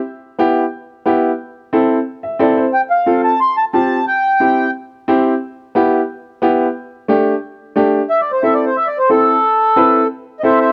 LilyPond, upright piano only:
\new Staff \with { instrumentName = "Upright piano" } { \time 4/4 \key a \minor \tempo 4 = 179 r4 <b e' g'>8 r4. <b e' g'>8 r8 | r4 <c' e' a'>8 r4 e''8 <c' e' a' d''>8 c''8 | r4 <c' f' a'>8 r4. <c' f' g'>8 r8 | r4 <c' e' g'>8 r4. <c' e' g'>8 r8 |
r4 <b e' g'>8 r4. <b e' g'>8 r8 | r4 <a d' g'>8 r4. <a d' g'>8 r8 | r4 <c' e' a'>8 r4. <c' e' a'>8 r8 | r4 <c' e' b'>8 r4. <c' e' a'>8 r8 | }